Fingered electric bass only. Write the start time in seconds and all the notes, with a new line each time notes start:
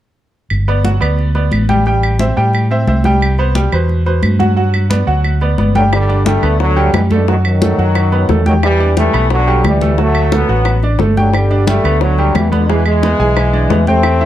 0.51 G1
1.02 D2
1.52 A1
2.37 A2
2.87 C2
3.73 E2
4.23 G2
5.07 D2
5.58 G1
6.43 D2
6.93 F#2
7.78 F#2
8.29 E2
9.14 B1
9.64 D2
10.49 A1
10.99 G1
11.84 D2
12.35 E2
13.19 B1
13.70 E2